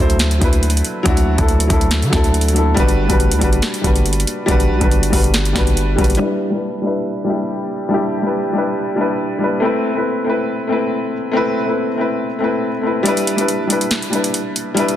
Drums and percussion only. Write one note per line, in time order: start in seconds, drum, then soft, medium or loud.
0.10 closed hi-hat medium
0.19 snare loud
0.19 closed hi-hat medium
0.31 closed hi-hat medium
0.41 kick medium
0.41 closed hi-hat medium
0.53 closed hi-hat medium
0.63 closed hi-hat medium
0.70 closed hi-hat medium
0.77 closed hi-hat medium
0.85 closed hi-hat medium
1.06 kick loud
1.06 closed hi-hat medium
1.17 closed hi-hat medium
1.38 kick loud
1.38 closed hi-hat medium
1.48 closed hi-hat medium
1.60 closed hi-hat medium
1.70 kick medium
1.70 closed hi-hat medium
1.81 closed hi-hat medium
1.91 snare loud
1.91 closed hi-hat medium
2.02 closed hi-hat medium
2.13 kick loud
2.13 snare medium
2.13 closed hi-hat medium
2.24 closed hi-hat medium
2.34 closed hi-hat medium
2.41 closed hi-hat medium
2.48 closed hi-hat medium
2.56 closed hi-hat medium
2.77 kick loud
2.77 closed hi-hat medium
2.88 closed hi-hat medium
3.10 kick loud
3.10 closed hi-hat medium
3.20 closed hi-hat medium
3.31 closed hi-hat medium
3.41 kick medium
3.41 closed hi-hat medium
3.53 closed hi-hat medium
3.62 snare loud
3.62 closed hi-hat medium
3.74 closed hi-hat medium
3.84 kick loud
3.84 closed hi-hat medium
3.96 closed hi-hat medium
4.06 closed hi-hat medium
4.13 closed hi-hat medium
4.20 closed hi-hat medium
4.27 closed hi-hat medium
4.48 kick loud
4.48 closed hi-hat medium
4.60 closed hi-hat medium
4.81 kick loud
4.81 closed hi-hat medium
4.91 closed hi-hat medium
5.03 closed hi-hat medium
5.13 kick medium
5.13 open hi-hat medium
5.24 closed hi-hat medium
5.34 snare loud
5.34 closed hi-hat medium
5.45 closed hi-hat medium
5.56 kick loud
5.56 snare loud
5.56 closed hi-hat medium
5.67 closed hi-hat medium
5.77 closed hi-hat medium
5.98 kick medium
5.98 closed hi-hat soft
6.04 closed hi-hat soft
6.10 closed hi-hat medium
6.15 closed hi-hat medium
13.06 closed hi-hat medium
13.17 closed hi-hat medium
13.27 closed hi-hat medium
13.38 closed hi-hat medium
13.48 closed hi-hat medium
13.70 closed hi-hat medium
13.81 closed hi-hat medium
13.91 snare loud
13.91 closed hi-hat medium
14.02 closed hi-hat medium
14.13 closed hi-hat medium
14.24 closed hi-hat medium
14.34 closed hi-hat medium
14.56 closed hi-hat medium
14.77 closed hi-hat medium
14.88 closed hi-hat medium